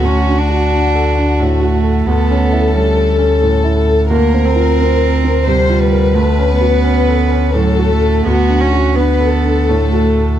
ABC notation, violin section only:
X:1
M:3/4
L:1/8
Q:1/4=87
K:D
V:1 name="Violin section"
F6 | A6 | _B4 =c =B- | B4 A2 |
F2 B A3 |]